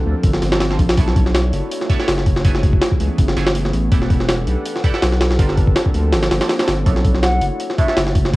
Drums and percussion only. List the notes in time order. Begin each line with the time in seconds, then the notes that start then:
0.24 kick, open hi-hat
0.34 snare
0.42 snare, open hi-hat
0.52 snare
0.60 snare, open hi-hat
0.71 snare
0.79 kick, open hi-hat
0.89 snare, open hi-hat
0.97 kick, open hi-hat
1.08 snare
1.16 kick, open hi-hat
1.26 snare
1.34 snare, open hi-hat
1.53 open hi-hat
1.71 open hi-hat
1.81 snare
1.90 kick, open hi-hat
2.00 snare
2.08 snare, open hi-hat
2.18 snare
2.26 kick, open hi-hat
2.36 snare
2.45 kick, open hi-hat
2.55 snare
2.63 kick, open hi-hat
2.73 kick
2.81 snare, open hi-hat
2.91 kick
3.00 open hi-hat
3.18 kick, open hi-hat
3.28 snare
3.37 snare, open hi-hat
3.47 snare
3.55 open hi-hat
3.65 snare
3.73 open hi-hat
3.92 kick, open hi-hat
4.02 snare
4.10 kick, open hi-hat
4.20 snare
4.29 snare, open hi-hat
4.47 open hi-hat
4.66 open hi-hat
4.76 snare
4.84 kick, open hi-hat
4.94 snare
5.02 snare, open hi-hat
5.12 snare
5.21 snare, open hi-hat
5.31 snare
5.39 kick, open hi-hat
5.49 snare
5.58 kick, open hi-hat
5.68 kick
5.76 snare, open hi-hat
5.86 kick
5.94 open hi-hat
6.13 snare, open hi-hat
6.23 snare, open hi-hat
6.31 snare, open hi-hat
6.41 snare, open hi-hat
6.49 snare, open hi-hat
6.59 snare, open hi-hat
6.68 snare, open hi-hat
6.86 kick, open hi-hat
6.96 snare
7.05 kick, open hi-hat
7.15 snare
7.23 snare, open hi-hat
7.41 open hi-hat
7.60 open hi-hat
7.70 snare
7.78 kick, open hi-hat
7.88 snare
7.97 snare, open hi-hat
8.07 snare
8.15 kick, open hi-hat
8.25 snare